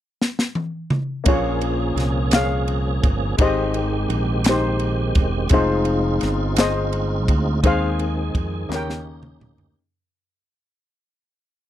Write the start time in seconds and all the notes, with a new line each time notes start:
0.22 snare
0.39 snare
0.55 high tom
0.90 mid tom
1.24 A#1 A#2 F3 A#3 C#4 F4, kick, ride bell
1.28 A#3 F4 G#4 C#5
1.61 ride bell
1.96 C2, snare, ride bell
2.31 F5, snare, clap, ride bell
2.36 G#4 C#5
2.68 ride bell
3.03 G1, kick, ride bell
3.37 G#1 G#2 D#3 G#3 C4 D#4 G4, kick, ride bell
3.41 G4 C5 D#5
3.74 ride bell
4.09 A#1, ride bell
4.44 snare, clap, ride bell
4.49 D#4 G4 C5
4.79 ride bell
5.15 E1, kick, ride bell
5.49 F1 G#3 C4 D#4 F4, kick, ride bell
5.53 F4 G#4 C5
5.85 ride bell
6.21 G1, snare, ride bell
6.56 G#4 C5 D#5, snare, clap, ride bell
6.93 ride bell
7.28 D2, kick, ride bell
7.63 D#2 D#3 G#3 C4 D#4 G#4 C5, kick, ride bell
7.67 F5
7.99 ride bell
8.35 F2, kick, ride bell
8.69 D#2 C#3 A#3 C#4 D#4 F#4 G4, snare, clap
8.74 G4 A#4 C#5 G5
8.90 snare
9.23 mid tom
9.40 D2, mid tom
9.58 floor tom